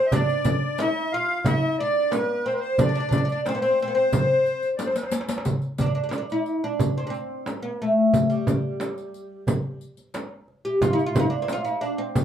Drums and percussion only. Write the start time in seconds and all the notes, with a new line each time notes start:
0.12 riq, darbuka dum, frame drum
0.29 riq, darbuka ka
0.45 riq, frame drum, darbuka dum
0.78 riq, darbuka tek, frame drum
1.12 darbuka ka
1.45 riq, darbuka dum, frame drum
1.79 darbuka ka
1.95 darbuka ka
2.12 riq, darbuka tek, frame drum
2.46 darbuka ka
2.78 riq, darbuka dum, frame drum
2.95 riq
3.11 riq, darbuka dum, frame drum
3.29 riq
3.46 riq, darbuka tek, frame drum
3.62 riq, darbuka ka
3.80 riq, darbuka ka
4.13 riq, darbuka dum, frame drum
4.46 riq, darbuka ka
4.63 riq, darbuka ka
4.79 riq, darbuka tek, frame drum
4.87 darbuka ka
4.96 riq, darbuka tek
5.03 darbuka ka
5.11 riq, darbuka tek
5.21 darbuka ka
5.28 riq, darbuka tek
5.38 darbuka ka
5.45 riq, frame drum, darbuka dum
5.62 riq
5.78 riq, frame drum, darbuka dum
5.97 darbuka ka
6.11 riq, darbuka tek, frame drum
6.30 riq
6.46 riq
6.79 riq, frame drum, darbuka dum
7.14 riq
7.30 darbuka ka
7.46 riq, darbuka tek, frame drum
7.80 darbuka ka
8.14 riq, frame drum, darbuka dum
8.31 riq
8.47 riq, frame drum, darbuka dum
8.64 darbuka ka
8.80 riq, darbuka tek, frame drum
8.98 riq
9.14 riq
9.47 riq, darbuka dum, frame drum
9.81 riq
9.97 riq, darbuka ka
10.14 riq, darbuka tek, frame drum
10.48 darbuka ka
10.81 riq, darbuka dum, frame drum
10.99 riq
11.15 riq, darbuka dum, frame drum
11.32 darbuka ka
11.48 riq, darbuka tek, frame drum
11.66 riq
11.83 riq
12.15 riq, frame drum, darbuka dum